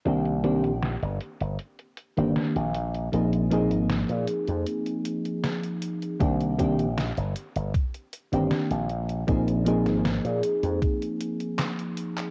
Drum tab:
HH |xxxxxxxxxxxxxxxx|xxxxxxxxxxxxxxxx|xxxxxxxxxxxxxxxx|xxxxxxxxxxxxxxxx|
CP |----------------|----------------|----------------|------------x--x|
SD |----o-------o---|----o-------o---|----o-------o---|---oo-------o---|
BD |----------------|----------------|o-o-----o-------|o-------o-------|